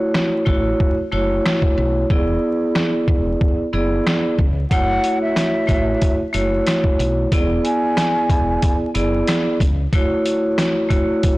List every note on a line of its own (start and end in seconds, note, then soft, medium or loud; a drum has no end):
0.00 0.40 A3 loud
0.00 0.41 E4 medium
0.00 0.41 F#4 medium
0.00 0.41 C#5 loud
0.14 cross-stick medium
0.14 snare loud
0.45 0.73 A1 medium
0.45 0.92 A3 medium
0.45 0.93 E4 medium
0.45 0.93 F#4 medium
0.45 0.93 C#5 medium
0.45 kick medium
0.80 kick loud
1.11 1.38 F#1 medium
1.11 2.02 A3 loud
1.11 2.03 E4 medium
1.11 2.03 F#4 medium
1.11 2.03 C#5 loud
1.46 cross-stick medium
1.46 snare loud
1.62 kick medium
1.78 2.03 B1 medium
2.10 2.36 E1 loud
2.10 3.61 B3 medium
2.10 3.62 E4 medium
2.10 3.62 G#4 medium
2.10 3.62 D5 loud
2.10 kick loud
2.75 cross-stick medium
2.75 snare loud
3.08 3.34 E1 medium
3.08 kick medium
3.41 kick loud
3.73 3.99 F#1 medium
3.73 4.33 B3 medium
3.73 4.34 E4 medium
3.73 4.34 G#4 medium
3.73 4.34 D5 loud
4.07 cross-stick medium
4.07 snare loud
4.39 4.64 C#2 medium
4.39 kick loud
4.71 4.97 F#1 loud
4.71 5.62 A3 loud
4.71 5.62 E4 medium
4.71 5.63 F#4 medium
4.71 5.63 C#5 medium
4.71 5.18 F#5 loud
4.71 kick loud
4.71 closed hi-hat medium
5.04 closed hi-hat medium
5.22 6.15 E5 medium
5.36 cross-stick medium
5.36 snare loud
5.36 closed hi-hat medium
5.67 5.94 A1 medium
5.67 6.14 A3 medium
5.67 6.14 E4 medium
5.67 6.15 F#4 medium
5.67 6.15 C#5 medium
5.67 kick medium
5.67 closed hi-hat medium
6.02 kick loud
6.02 closed hi-hat medium
6.33 6.60 F#1 medium
6.33 7.24 A3 loud
6.33 7.24 E4 medium
6.33 7.25 F#4 medium
6.33 7.25 C#5 loud
6.33 closed hi-hat medium
6.67 cross-stick medium
6.67 snare loud
6.67 closed hi-hat loud
6.84 kick medium
6.99 7.25 B1 medium
6.99 closed hi-hat medium
7.32 7.58 E1 loud
7.32 8.83 B3 medium
7.32 8.83 E4 medium
7.32 8.84 G#4 medium
7.32 8.84 D5 loud
7.32 kick loud
7.32 closed hi-hat medium
7.65 8.76 G#5 medium
7.65 closed hi-hat medium
7.97 cross-stick medium
7.97 snare loud
7.97 closed hi-hat loud
8.30 8.55 E1 medium
8.30 kick medium
8.30 closed hi-hat medium
8.62 kick loud
8.62 closed hi-hat medium
8.94 9.21 F#1 medium
8.94 9.55 B3 medium
8.94 9.55 E4 medium
8.94 9.56 G#4 medium
8.94 9.56 D5 loud
8.94 closed hi-hat medium
9.27 cross-stick medium
9.27 snare loud
9.27 closed hi-hat loud
9.60 9.86 C#2 medium
9.60 kick medium
9.60 closed hi-hat medium
9.93 10.84 A3 medium
9.93 10.84 E4 medium
9.93 10.84 F#4 medium
9.93 10.85 C#5 loud
9.93 kick loud
9.93 closed hi-hat medium
10.26 closed hi-hat medium
10.58 cross-stick medium
10.58 snare loud
10.58 closed hi-hat medium
10.89 11.36 A3 medium
10.89 11.36 E4 medium
10.89 11.36 F#4 medium
10.89 11.37 C#5 medium
10.89 kick medium
10.89 closed hi-hat medium
11.23 kick loud
11.23 closed hi-hat medium